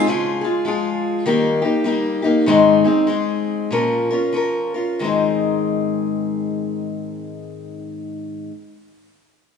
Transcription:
0.07 0.43 C#3 medium
0.07 0.43 F3 medium
0.07 0.44 G#3 medium
0.07 0.43 F4 medium
0.07 0.40 G#4 medium
0.41 0.65 G#3 soft
0.41 0.66 F4 soft
0.41 0.65 G#4 soft
0.65 1.24 F3 soft
0.65 1.25 G#3 medium
0.65 1.26 F4 medium
0.65 1.26 G#4 medium
1.26 1.62 D#3 medium
1.26 1.62 G3 medium
1.26 1.62 A#3 medium
1.26 1.63 D#4 medium
1.26 1.61 G4 medium
1.62 1.84 A#3 soft
1.62 1.85 D#4 soft
1.62 1.85 G4 soft
1.84 2.22 G3 medium
1.84 2.22 A#3 soft
1.84 2.23 D#4 medium
1.84 2.21 G4 medium
2.22 2.47 A#3 soft
2.22 2.47 D#4 soft
2.22 2.46 G4 soft
2.46 2.84 G#2 medium
2.46 2.84 D#3 medium
2.46 2.85 G#3 medium
2.46 2.85 C4 medium
2.46 2.84 D#4 medium
2.46 2.83 G#4 medium
2.84 3.06 G#3 soft
2.84 3.07 C4 soft
2.84 3.08 D#4 soft
2.84 3.08 G#4 soft
3.07 3.70 G#3 soft
3.07 3.71 C4 medium
3.07 3.72 D#4 medium
3.07 3.72 G#4 medium
3.71 4.10 A#2 medium
3.71 4.11 F3 medium
3.71 4.11 C#4 medium
3.71 4.11 F4 medium
3.71 4.09 A#4 medium
4.11 4.33 C#4 soft
4.11 4.34 F4 soft
4.11 4.35 A#4 soft
4.33 4.74 F3 soft
4.33 4.75 C#4 soft
4.33 4.75 F4 soft
4.33 4.73 A#4 soft
4.74 5.02 C#4 soft
4.74 5.01 F4 soft
4.74 5.00 A#4 soft
4.99 8.49 G#2 medium
4.99 8.50 D#3 medium
4.99 8.51 G#3 medium
5.04 8.54 C4 medium
5.04 8.54 D#4 medium
5.04 8.56 G#4 medium

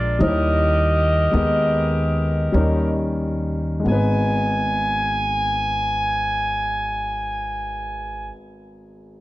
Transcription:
0.00 0.17 A#1 medium
0.00 0.17 A#2 soft
0.00 0.11 G#3 medium
0.00 0.12 D4 medium
0.00 0.18 D4 medium
0.00 0.13 F4 medium
0.00 0.18 F4 medium
0.00 0.13 A#4 medium
0.00 0.18 D5 medium
0.19 1.30 D#2 medium
0.19 1.30 D#3 medium
0.19 1.24 G3 medium
0.19 1.24 D#4 medium
0.19 1.25 E4 medium
0.19 2.93 G4 medium
0.19 2.93 A#4 medium
0.19 0.28 C5 medium
0.19 2.96 D#5 medium
0.29 1.29 C#5 medium
1.31 2.50 D#2 medium
1.31 2.50 D#3 medium
1.31 2.43 G#3 medium
1.31 2.44 B3 medium
1.31 2.44 D#4 medium
1.31 2.45 D#5 medium
2.52 3.82 D#2 medium
2.52 3.82 D#3 medium
2.52 3.74 G3 medium
2.52 3.75 C#4 medium
2.52 3.75 D#4 medium
2.52 3.76 A#4 medium
3.80 8.23 G#3 medium
3.84 8.29 G#1 medium
3.84 8.27 B3 medium
3.84 8.31 D#4 medium
3.84 8.30 G#5 medium
3.92 8.35 B4 medium

